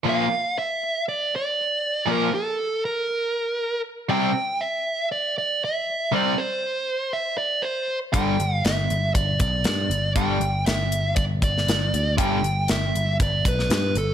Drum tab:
HH |----------------|----------------|----------------|----------------|
SD |----------------|----------------|----------------|----------------|
BD |----------------|----------------|----------------|----------------|

HH |x-x-x-x-x-x-x-x-|x-x-x-x-x-x-x-x-|x-x-x-x-x-x-x-x-|
SD |----o-------o---|----o------oo---|----o------oo---|
BD |o-------o-o-----|o-------o-o-----|o-------o-o-----|